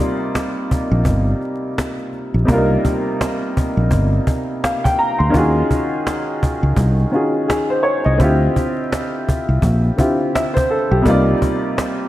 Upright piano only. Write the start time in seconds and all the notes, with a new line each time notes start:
Already playing: C3 G3 A#3 D#4 F4 D5 C6
2.45 C3 G3 A#3
2.50 D4 F4 A#4
2.56 D#4
4.64 F5
4.84 G5
4.99 A#5
5.19 C6
5.30 D#3 C#4
5.34 F4 F#4
5.38 G#4
7.11 D#3 C#4 F4 F#4
7.15 G#4
7.48 G#4
7.70 C5
7.83 C#5
8.05 D#5
8.16 D3 C4
8.20 E4 F4
8.24 G4
9.96 D3 C4 E4 F4
10.01 G4
10.35 E5
10.54 C5
10.71 A4
10.91 G4
11.02 C3 G3 A#3
11.06 D#4 F4 D5